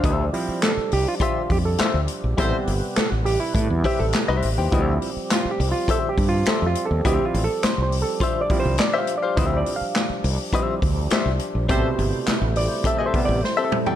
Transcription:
<<
  \new Staff \with { instrumentName = "Horn section" } { \time 4/4 \key d \dorian \tempo 4 = 103 r1 | <g' a' c''>8 r2. r8 | r1 | r1 |
r1 | <g' a' c''>8 r2. r8 | }
  \new Staff \with { instrumentName = "Clean electric guitar" } { \time 4/4 \key d \dorian <f' g' c'' e''>16 r4. r16 <f' g' c'' e''>16 r8. <f' g' c'' e''>16 r8. | <e' g' c'' e''>16 r2 r16 <e' g' c'' e''>16 r8 <e' g' c'' e''>16 r16 <e' g' c'' g''>16 | <f' g' c'' e''>16 r4. r16 <f' g' c'' e''>16 r8. <f' g' c'' e''>16 r8. | <f' g' c'' e''>16 r4. r16 <f' g' c'' e''>16 r4 <f' g' c'' e''>16 r16 <f' g' c'' f''>16 |
<f' g' c'' e''>16 r4. r16 <f' g' c'' e''>16 r8. <f' g' c'' e''>16 r8. | <c' g' a' e''>16 r4. r16 <c' g' a' e''>16 <c' g' a' e''>16 r8. <c' g' a' e''>16 r16 <c' g' a' g''>16 | }
  \new Staff \with { instrumentName = "Clav" } { \time 4/4 \key d \dorian d'16 r8. a'8 g'16 f'16 f'8 g'16 a'8 r8. | r4 a'8 g'16 e'16 e'8 g'16 a'8 r8. | r4 \tuplet 3/2 { f'8 g'8 f'8 a'8 g'8 f'8 a'8 f'8 a'8 } | \tuplet 3/2 { g'8 f'8 a'8 c''8 c''8 a'8 c''8 d''8 c''8 d''8 f''8 d''8 } |
\tuplet 3/2 { c''8 d''8 f''8~ } f''8. r2 r16 | c''4. d''8 \tuplet 3/2 { e''8 c''8 d''8 c''8 a'4 } | }
  \new Staff \with { instrumentName = "Clav" } { \clef bass \time 4/4 \key d \dorian r8 <f g c' e'>8 r2. | <g b c'>4. r2 r8 | <f g c' e'>8 r2. r8 | <f g c' e'>8 r2 <f g c' e'>8 r4 |
<f g c' e'>8 r4. <f g c' e'>8 r4. | <b, c g>2~ <b, c g>8 <c g b>8 r4 | }
  \new Staff \with { instrumentName = "Tonewheel organ" } { \time 4/4 \key d \dorian << { g'1~ | g'1~ | g'1~ | g'1~ |
g'1 | e'1 | } \\ { d'1 | c1 | c'1~ | c'2 d'2~ |
d'1 | c''1 | } >> }
  \new Staff \with { instrumentName = "Tonewheel organ" } { \clef bass \time 4/4 \key d \dorian <f g>1 | b'1 | <f g>1~ | <f g>1~ |
<f g>1 | a1 | }
  \new Staff \with { instrumentName = "Fretless electric bass" } { \clef bass \time 4/4 \key d \dorian d,8 r4 c,16 r8. f,8 r16 d,16 r16 bes,,16 | a,,16 r16 g,,16 r8 a,,8 r16 a,16 e,16 r16 a,,16 r16 c,16 a,,16 ees,16 | d,8 r4 c,16 r8. g,8 r16 f,16 r16 ees,16 | d,16 r16 a,,16 r8 c,8 r4 c,16 r4 |
d,8 r4 c,16 r8. d,8 r16 c,16 r16 bes,,16 | a,,16 r16 g,,16 r8 a,,8 r4 a,,16 r4 | }
  \new DrumStaff \with { instrumentName = "Drums" } \drummode { \time 4/4 <hh bd>8 hho8 <hc hh sn>8 hho8 <hh bd>8 <hho bd>8 <hc hh sn>8 hh8 | <hh bd>8 hho8 <hc hh sn>8 hho8 <hh bd>8 <hho bd>8 <hc hh sn>8 hho8 | <hh bd>8 hho8 <hc hh sn>8 hho8 <hh bd>8 <hho bd>8 <hc hh sn>8 hh8 | <hh bd>8 hho8 <hc hh sn>8 hho8 <hh bd>8 <hho bd>8 <hc hh sn>8 hh8 |
<hh bd>8 hho8 <hc hh sn>8 hho8 <hh bd>8 <hho bd>8 <hc hh sn>8 hh8 | <hh bd>8 hho8 <hc hh sn>8 hho8 <hh bd>8 <hho bd>8 sn8 toml16 tomfh16 | }
>>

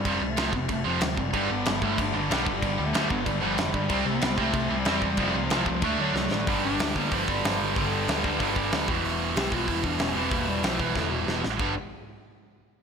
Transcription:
<<
  \new Staff \with { instrumentName = "Bass clarinet" } { \clef bass \time 4/4 \key f \lydian \tempo 4 = 187 g8. a8. b8 a8 f4 g8~ | g8 b4 a4~ a16 r4 g16~ | g8. a8. b8 g8 f4 g8~ | g8 b4 a4~ a16 g4 g16~ |
g8. f8. f8 a8 fis4 g8~ | \key g \major g8 d'4 bes8 f8 g8 f8 d8 | d2 r2 | r4 g'8 f'8 e'8 d'8 cis'8 c'8 |
bes8 g8 f8 e8 d8 b,8 r4 | r1 | }
  \new Staff \with { instrumentName = "Distorted electric guitar" } { \clef bass \time 4/4 \key f \lydian <f, c f>8 <f, c>8 <f, c f>8 <f, c>8 <f, c>8 <f, c f>8 <f, c>8 <f, c>8 | <g, d g>8 <g, d>8 <g, d>8 <g, d g>8 <g, d>8 <g, d>8 <g, d g>8 <g, d>8 | <g, d>8 <g, d>8 <g, d g>8 <g, d>8 <g, d>8 <g, d g>8 <g, d>8 <g, d>8 | <c g c'>8 <c g>8 <c g>8 <c g c'>8 <c g>8 <c g>8 <c g c'>8 <c g>8 |
<f a c'>8 <f a>8 <f a c'>8 <f a>8 <d a d'>8 <d a d'>8 <d a>8 <d a>8 | \key g \major <g, d g b d'>4. <g, d g b d'>2~ <g, d g b d'>8 | <g, d g b d'>4. <g, d g b d'>2 <e g b e'>8~ | <e g b e'>4 <e g b e'>2~ <e g b e'>8 <e g b e'>8~ |
<e g b e'>4 <e g b e'>2~ <e g b e'>8 r8 | <g, d g b d'>8 r2. r8 | }
  \new Staff \with { instrumentName = "Distorted electric guitar" } { \clef bass \time 4/4 \key f \lydian r1 | <g, d g>2~ <g, d g>8 <g, d g>8 <g, d g>4 | <g, d g>2~ <g, d g>8 <g, d g>8 <g, d g>4 | <c g c'>2~ <c g c'>8 <c g c'>8 <c g c'>4 |
<f, c f>2 <d a d'>2 | \key g \major <g, d g>2 <g, d g>2 | <g, d g>2 <g, d g>4. r8 | r1 |
r1 | r1 | }
  \new Staff \with { instrumentName = "Distorted electric guitar" } { \clef bass \time 4/4 \key f \lydian <f, c f>8 <f, c>8 <f, c f>8 <f, c>8 <f, c>8 <f, c f>8 <f, c>8 <f, c>8 | <g, d g>8 <g, d>8 <g, d>8 <g, d g>8 <g, d>8 <g, d>8 <g, d g>8 <g, d>8 | <g, d>8 <g, d>8 <g, d g>8 <g, d>8 <g, d>8 <g, d g>8 <g, d>8 <g, d>8 | <c g c'>8 <c g>8 <c g>8 <c g c'>8 <c g>8 <c g>8 <c g c'>8 <c g>8 |
<f, c f>8 <f, c>8 <f, c f>8 <f, c>8 <d a d'>8 <d a d'>8 <d a>8 <d a>8 | \key g \major <g, d g>2 <g, d g>2 | <g, d g>2 <g, d g>4. <e, b, e>8~ | <e, b, e>4. <e, b, e>2 <e, b, e>8~ |
<e, b, e>4. <e, b, e>2 r8 | <g, d g>8 r2. r8 | }
  \new Staff \with { instrumentName = "Picked electric bass" } { \clef bass \time 4/4 \key f \lydian f,,8 c,8 c,8 f,,8 f,,8 f,,8 d,8 fis,,8 | g,,8 g,,8 g,,8 g,,8 g,,8 g,,8 b,,8 g,,8 | g,,8 d,8 d,8 g,,8 g,,8 g,,8 f,,8 g,8 | c,8 c,8 c,8 c,8 c,8 c,8 e,8 e,8 |
f,,8 c,8 c,8 c,8 d,8 d,8 c,8 a,,8 | \key g \major g,,4 d,8 d,8 g,,4 g,,8 g,,8 | g,,4 d,8 d,8 g,,4 d,8 e,,8 | e,,4 b,,8 b,,8 e,,4 e,,8 e,,8 |
e,,4 b,,8 b,,8 e,,4 e,,8 a,,8 | g,,8 r2. r8 | }
  \new DrumStaff \with { instrumentName = "Drums" } \drummode { \time 4/4 <cymc bd>4 <cymc sn>8 bd8 <cymc bd>4 <cymc sn>8 bd8 | <cymc bd>4 <cymc sn>8 bd8 <cymc bd>4 <cymc sn>8 bd8 | <cymc bd>4 <cymc sn>8 bd8 <cymc bd>4 <cymc sn>8 bd8 | <cymc bd>4 <cymc sn>8 bd8 <cymc bd>4 <cymc sn>8 bd8 |
<cymc bd>4 <cymc sn>8 bd8 <cymc bd>4 sn8 sn8 | <hho bd>4 <hho sn>8 bd8 <hho bd>8 bd8 <hho sn>4 | <hho bd>4 <hho sn>8 bd8 <hho bd>8 bd8 <hho sn>8 bd8 | hho4 <hho sn>8 bd8 <hho bd>8 bd8 <hho sn>4 |
<hho bd>4 <hho sn>8 bd8 <bd sn>4 sn8 sn8 | <cymc bd>4 r4 r4 r4 | }
>>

